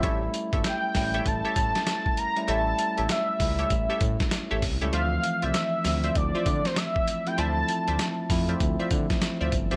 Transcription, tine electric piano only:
X:1
M:4/4
L:1/16
Q:"Swing 16ths" 1/4=98
K:Aphr
V:1 name="Tine electric piano"
[G,A,^CE]4- [G,A,CE] z [G,A,CE]6- [G,A,CE] z2 [G,A,CE] | [G,A,^CE]4- [G,A,CE] z [G,A,CE]6- [G,A,CE] z2 [G,A,CE] | [E,F,A,C_E]4- [=E,F,A,C_E] z [F,A,C=E]6- [F,A,CE] z2 [F,A,CE] | [F,A,CE]4- [F,A,CE] z [F,A,CE]6- [F,A,CE] z2 [F,A,CG] |]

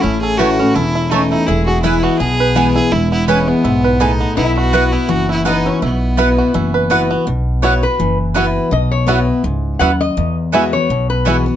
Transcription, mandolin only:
X:1
M:4/4
L:1/16
Q:"Swing" 1/4=166
K:Bmix
V:1 name="Mandolin"
z4 [A,Eca] z6 z [A,Eca] z3 | z4 [B,EBg] z6 z [B,EBg] z3 | z4 [B,EBg] z6 z [B,EBg] z3 | z4 [B,EBf] z6 z [B,EBf] z3 |
z4 [B,EBf] z6 z [B,EBf] z3 | z4 [B,EBf] z6 z [B,EBf] z3 | z4 [B,EBf] z6 z [B,EBf] z3 | z4 [B,Feg] z6 z [B,Feg] z3 |]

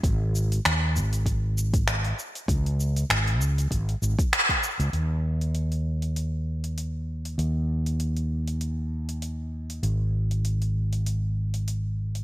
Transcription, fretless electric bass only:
X:1
M:4/4
L:1/16
Q:"Swing 16ths" 1/4=98
K:Db
V:1 name="Fretless electric bass" clef=bass
A,,,4 E,,2 A,,,8 z2 | D,,4 A,,,2 D,,2 A,,, z A,,, z4 D,, | E,,16 | E,,16 |
A,,,16 |]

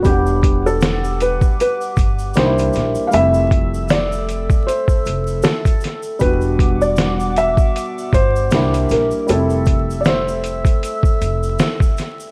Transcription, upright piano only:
X:1
M:4/4
L:1/8
Q:"Swing 16ths" 1/4=78
K:Em
V:1 name="Upright piano"
[G,B,Df]6 [G,_B,D^DE]2 | [G,A,CE]8 | [B,,G,DF]6 [G,_B,DE]2 | [G,A,CE]8 |]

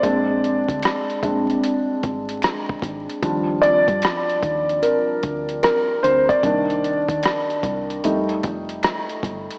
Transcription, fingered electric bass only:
X:1
M:4/4
L:1/16
Q:"Swing 16ths" 1/4=75
K:Eblyd
V:1 name="Fingered electric bass" clef=bass
B,,,3 D,, z2 B,,,2 z2 _A,,,2 z2 A,,, z | E,,3 G,, z2 E,,2 z2 D,,2 z2 D,, z | C,,3 E,, z2 C,,2 F,,,2 F,,,2 z2 G,,, z |]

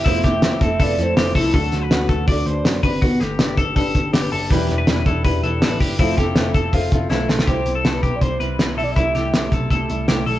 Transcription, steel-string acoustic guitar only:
X:1
M:4/4
L:1/8
Q:1/4=162
K:Ador
V:1 name="Steel-string acoustic guitar"
[=F,A,CE] [A,CE] [F,A,CE] [A,CE]2 [A,CE] [F,A,CE]2 | z8 | z8 | [E,G,DEB] [DEB] [G,DEB] [DEB]2 [DEB] [G,DEB]2 |
[=F,A,CEA] [CEA] [A,CEA] [CEA]2 [CEA] [A,CEA]2 | [C,G,CE] [G,CE] [C,G,CE]2 [C,G,CE] [G,CE] [C,G,CE] [G,CE] | [C,G,A,E] [G,A,E] [C,G,A,E]2 [C,G,A,E] [G,A,E] [C,G,A,E] [G,A,E] |]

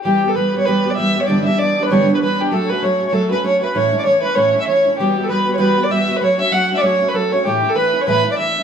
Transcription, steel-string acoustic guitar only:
X:1
M:4/4
L:1/8
Q:"Swing" 1/4=195
K:Edor
V:1 name="Steel-string acoustic guitar"
[E,G,B,G] [G,B,G] [E,G,B,G] [G,B,G] [E,G,B,G] [G,B,G] [E,G,B,G] [G,B,G] | [G,,D,E,G,B,D] [E,G,B,D] [E,G,B,D] [E,G,B,D] [G,,D,E,G,B,D] [E,G,B,D] [E,G,B,D] [E,G,B,D] | [F,A,CF] [A,CF] [F,A,CF] [A,CF] [F,A,CF] [A,CF] [F,A,CF] [A,CF] | [A,,E,A,CE] [A,CE] [E,A,CE] [A,CE] [A,,E,A,CE] [A,CE] [E,A,CE] [A,CE] |
[E,G,B,F] [G,B,F] [E,G,B,F] [G,B,F] [E,G,B,F] [G,B,F] [E,G,B,F] [G,B,F] | [F,A,CF] [A,CF] [F,A,CF] [A,CF] [F,A,CF] [A,CF] [F,A,CF] [A,CF] | [A,,E,A,CE] [A,CE] [E,A,CE] [A,CE] [A,,E,A,CE] [A,CE] [E,A,CE] [A,CE] |]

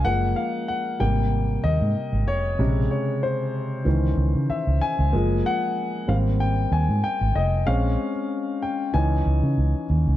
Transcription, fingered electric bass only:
X:1
M:4/4
L:1/16
Q:"Swing 16ths" 1/4=94
K:Ab
V:1 name="Fingered electric bass" clef=bass
_G,,,2 z4 A,,,4 E,, A,, z A,,, F,,,2 | B,,,2 z6 D,,2 D,, D, z D,, z D,, | _G,,,2 z4 A,,,4 E,, A,, z A,,, F,,,2 | B,,,2 z6 D,,2 D,, D, D,, z E,, D,, |]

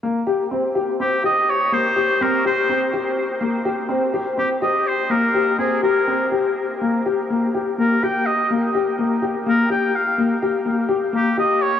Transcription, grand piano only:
X:1
M:7/8
L:1/8
Q:1/4=124
K:Cphr
V:1 name="Grand piano"
B, G C G C G2 | B, G C G C G2 | B, G C G C G2 | B, G C G C G2 |
B, G B, G B, G2 | B, G B, G B, G2 | B, G B, G B, G2 |]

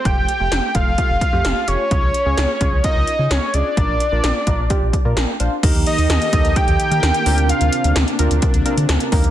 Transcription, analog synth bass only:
X:1
M:4/4
L:1/16
Q:1/4=129
K:Bb
V:1 name="Analog synth bass" clef=bass
F,,, F,,, z F,,, F,,, z F,,, F,,, z F,,, z F,, F,,, z F,,, z | _D,, D,, z D,, D,, z D,, D,, z D,, z _D, D,, z D,, z | B,,, B,,, z B,,, B,,, z B,,, B,,, z B,,, z B,, B,,, z B,,, z | E,, E,, z E,, E,, z E,, E,, z E,, z E, E,, z D,,2- |
D,, D,, z D,, D,, z D,, D,, z D,, z D, D,, z E,,2 |]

